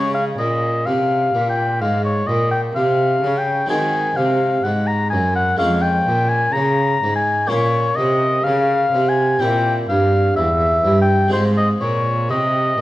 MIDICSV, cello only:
0, 0, Header, 1, 2, 480
1, 0, Start_track
1, 0, Tempo, 949367
1, 1875, Time_signature, 4, 2, 24, 8
1, 3312, Tempo, 960000
1, 6443, End_track
2, 0, Start_track
2, 0, Title_t, "Cello"
2, 0, Program_c, 0, 42
2, 0, Note_on_c, 0, 49, 50
2, 190, Note_off_c, 0, 49, 0
2, 193, Note_on_c, 0, 46, 57
2, 436, Note_on_c, 0, 48, 52
2, 443, Note_off_c, 0, 46, 0
2, 673, Note_off_c, 0, 48, 0
2, 676, Note_on_c, 0, 46, 54
2, 916, Note_on_c, 0, 44, 60
2, 924, Note_off_c, 0, 46, 0
2, 1149, Note_off_c, 0, 44, 0
2, 1152, Note_on_c, 0, 46, 51
2, 1390, Note_off_c, 0, 46, 0
2, 1393, Note_on_c, 0, 48, 63
2, 1628, Note_off_c, 0, 48, 0
2, 1631, Note_on_c, 0, 49, 53
2, 1867, Note_off_c, 0, 49, 0
2, 1869, Note_on_c, 0, 51, 59
2, 2102, Note_off_c, 0, 51, 0
2, 2106, Note_on_c, 0, 48, 59
2, 2343, Note_off_c, 0, 48, 0
2, 2346, Note_on_c, 0, 44, 59
2, 2590, Note_on_c, 0, 42, 54
2, 2597, Note_off_c, 0, 44, 0
2, 2825, Note_off_c, 0, 42, 0
2, 2828, Note_on_c, 0, 41, 60
2, 3065, Note_off_c, 0, 41, 0
2, 3070, Note_on_c, 0, 46, 61
2, 3306, Note_off_c, 0, 46, 0
2, 3308, Note_on_c, 0, 49, 68
2, 3544, Note_off_c, 0, 49, 0
2, 3551, Note_on_c, 0, 44, 55
2, 3784, Note_off_c, 0, 44, 0
2, 3790, Note_on_c, 0, 46, 62
2, 4012, Note_off_c, 0, 46, 0
2, 4027, Note_on_c, 0, 48, 62
2, 4260, Note_off_c, 0, 48, 0
2, 4263, Note_on_c, 0, 49, 65
2, 4496, Note_off_c, 0, 49, 0
2, 4499, Note_on_c, 0, 48, 62
2, 4738, Note_off_c, 0, 48, 0
2, 4743, Note_on_c, 0, 46, 62
2, 4980, Note_off_c, 0, 46, 0
2, 4988, Note_on_c, 0, 43, 61
2, 5218, Note_off_c, 0, 43, 0
2, 5221, Note_on_c, 0, 40, 65
2, 5458, Note_off_c, 0, 40, 0
2, 5462, Note_on_c, 0, 43, 60
2, 5700, Note_off_c, 0, 43, 0
2, 5704, Note_on_c, 0, 44, 70
2, 5941, Note_off_c, 0, 44, 0
2, 5946, Note_on_c, 0, 46, 64
2, 6188, Note_on_c, 0, 48, 62
2, 6195, Note_off_c, 0, 46, 0
2, 6425, Note_off_c, 0, 48, 0
2, 6443, End_track
0, 0, End_of_file